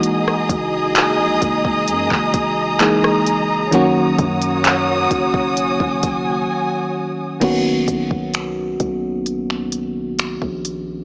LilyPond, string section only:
\new Staff \with { instrumentName = "String section" } { \time 4/4 \key b \major \tempo 4 = 65 << { <gis' dis'' dis'''>1 | <fis' cis'' dis'''>1 | r1 | } \\ { ais''1~ | ais''2 gis''2 | r1 | } >> }